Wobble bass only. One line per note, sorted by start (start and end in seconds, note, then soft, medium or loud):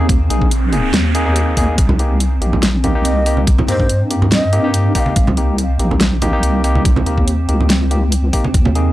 0.00 0.29 D#2 loud
0.30 0.92 A#1 loud
0.93 1.55 D#2 loud
1.57 1.77 D#2 loud
1.78 2.40 C2 loud
2.41 3.03 A#1 loud
3.05 3.67 C2 loud
3.68 4.93 G2 loud
5.16 5.78 C2 loud
5.79 6.41 A#1 loud
6.43 7.05 C2 loud
7.06 7.47 D#2 loud
7.49 8.31 C#2 loud
8.54 8.93 D#2 loud